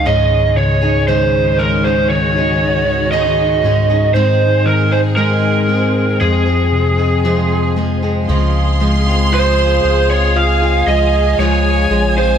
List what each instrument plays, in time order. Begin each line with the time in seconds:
Already playing: tine electric piano C#2, string section D#3 G#3 C#4 G#4
0.05 tine electric piano G#2, steel-string acoustic guitar C#3 G#3 C#4 D#4 G#4, lead electric guitar D#5
0.57 tine electric piano C#3, lead electric guitar C#5
0.82 steel-string acoustic guitar C#4 D#4 G#4
1.08 steel-string acoustic guitar C#3 G#3 C#4 D#4 G#4, tine electric piano D#3, lead electric guitar C5
1.58 steel-string acoustic guitar G#3 C#4 D#4 G#4, tine electric piano G#3, string section F#4, lead electric guitar A#4
1.84 steel-string acoustic guitar C#4 D#4 G#4, lead electric guitar C5
2.09 tine electric piano D#3, lead electric guitar C#5
2.36 steel-string acoustic guitar C#4 D#4 G#4
3.12 steel-string acoustic guitar C#3 G#3 C#4 D#4 G#4, lead electric guitar D#5
3.63 tine electric piano G#2, steel-string acoustic guitar G#3 C#4 D#4 G#4
3.89 steel-string acoustic guitar C#4 D#4 G#4
4.14 tine electric piano G#2, steel-string acoustic guitar G#2 D#3 G#3 C4 D#4 G#4, string section G#3 C4 G#4, lead electric guitar C5
4.66 tine electric piano D#3, lead electric guitar A#4
4.91 steel-string acoustic guitar G#3 C4 D#4 G#4, lead electric guitar C5
5.17 steel-string acoustic guitar G#2 D#3 G#3 C4 D#4 G#4, tine electric piano G#3, lead electric guitar A#4
5.68 steel-string acoustic guitar G#3 C4 D#4 G#4, tine electric piano C4
6.20 steel-string acoustic guitar F2 C3 F3 G#3 C4 G#4, tine electric piano F2, string section F3 G#4, lead electric guitar G#4
6.46 steel-string acoustic guitar F3 G#3 C4 G#4
6.72 tine electric piano C3
6.98 steel-string acoustic guitar F3 G#3 C4 G#4
7.24 steel-string acoustic guitar F2 C3 F3 G#3 C4 G#4, tine electric piano F3
7.76 steel-string acoustic guitar F3 G#3 C4 G#4, tine electric piano G#3
8.02 steel-string acoustic guitar F3 G#3 C4 G#4
8.28 sub bass C#2, tine electric piano C#3, steel-string acoustic guitar C#3 F3 G#3 C4 F4, string section G#4 F5 C6
8.80 steel-string acoustic guitar F3 G#3 C4 F4, tine electric piano G#3
9.06 steel-string acoustic guitar G#3 C4 F4
9.32 steel-string acoustic guitar C#3 F3 G#3 C4 F4, tine electric piano F4, lead electric guitar C5
9.84 sub bass C#2, tine electric piano G#4
10.10 steel-string acoustic guitar G#3 C4 F4, lead electric guitar C#5
10.35 tine electric piano F4, lead electric guitar F5, string section G#5
10.62 steel-string acoustic guitar G#3 C4 F4
10.87 sub bass C#2, steel-string acoustic guitar F3 G#3 C4 F4, tine electric piano G#4, lead electric guitar D#5
11.39 sub bass C#2, steel-string acoustic guitar C#3 F3 G#3 F4, tine electric piano G#3, lead electric guitar C#5
11.90 sub bass A#1, steel-string acoustic guitar F3 G#3 C4 F4, tine electric piano G#4
12.17 steel-string acoustic guitar G#3 C4 F4, lead electric guitar C5